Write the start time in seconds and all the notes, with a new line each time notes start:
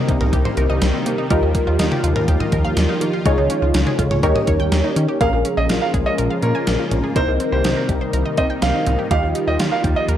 Already playing: C3 D#3 G3 A#3 C4 D#4 G4 A#4
0.09 C2 D#4, kick, closed hi-hat
0.21 C2 A#4, mid tom
0.33 C2 G4, kick, closed hi-hat
0.45 C5, mid tom
0.57 C2 A#4, closed hi-hat
0.69 C2 D#5
0.82 C2 G3, snare, closed hi-hat
0.94 C4
1.06 C3 A#3, closed hi-hat
1.18 D#4
1.30 D#2 F3 G3 D#4 F4 G4 A#4, kick, closed hi-hat
1.43 D#2 D#4
1.55 A#3, kick, closed hi-hat
1.67 D#2 F4
1.79 D#2 D#4, snare, closed hi-hat
1.91 G4, mid tom
2.04 D#2 F4, closed hi-hat
2.16 D#2 A#4, mid tom
2.28 D#2 G4, kick, closed hi-hat
2.40 D#5, mid tom
2.52 D#2 A#4, kick, closed hi-hat
2.65 D#2 F5
2.77 D#2 G3, snare, closed hi-hat
2.89 D#4
3.01 D#3 A#3, closed hi-hat
3.13 F4
3.26 C#2 G#3 C#4 D#4 F4 G#4 C#5, kick, closed hi-hat
3.38 C#2 D#4
3.50 C#4, closed hi-hat
3.62 C#2 F4
3.74 C#2 D#4, snare, closed hi-hat
3.87 G#4, mid tom
3.99 C#2 F4, kick, closed hi-hat, cowbell
4.11 C#2 C#5, mid tom
4.23 D#2 G3 A#3 D#4 G4 A#4 C#5, kick, closed hi-hat
4.35 D#5, mid tom
4.47 D#2 C#5, kick, closed hi-hat
4.60 D#2 G5
4.72 D#2 A#3, snare, closed hi-hat
4.84 D#4
4.96 D#3 C#4, closed hi-hat
5.09 G4
5.21 A#1 C#3 F3 G#3 A#3 C#4 F4 G#4 A#4 F5, kick, closed hi-hat
5.33 A#1 F4
5.45 C#4, closed hi-hat
5.57 A#1 G#4 D#5
5.69 A#1 F4, snare, closed hi-hat
5.82 A#4 F5
5.94 A#1 G#4, kick, closed hi-hat
6.06 C#5 D#5
6.18 A#1 A#4, closed hi-hat
6.30 F5
6.42 A#2 A#4 C#5, closed hi-hat
6.55 G#5
6.67 A#1 A#3, snare, closed hi-hat
6.79 F4
6.91 A#1 C#4, closed hi-hat, mid tom
7.04 G#4
7.16 C2 C3 D#3 G3 A#3 C4 D#4 A#4 C5, kick, closed hi-hat
7.28 C2 D#4
7.40 C4, closed hi-hat
7.52 C2 G4 C5
7.64 C2 D#4, snare, closed hi-hat
7.77 A#4
7.89 C2 G4, kick, closed hi-hat
8.01 C5
8.13 C2 A#4, closed hi-hat
8.26 D#5
8.37 C3 C5 D#5, kick, closed hi-hat
8.50 G5
8.62 C2 A#3 F5, snare, closed hi-hat
8.74 D#4
8.86 C2 C4, closed hi-hat, mid tom
8.99 G4
9.11 D#2 F3 G3 A#3 D#4 F4 G4 F5, kick, closed hi-hat
9.23 D#2 F4
9.35 D#4, closed hi-hat
9.47 D#2 G4 D#5
9.60 D#2 F4, snare, closed hi-hat
9.72 A#4 F5
9.84 D#2 G4, kick, closed hi-hat
9.96 D#5
10.08 D#2 A#4, closed hi-hat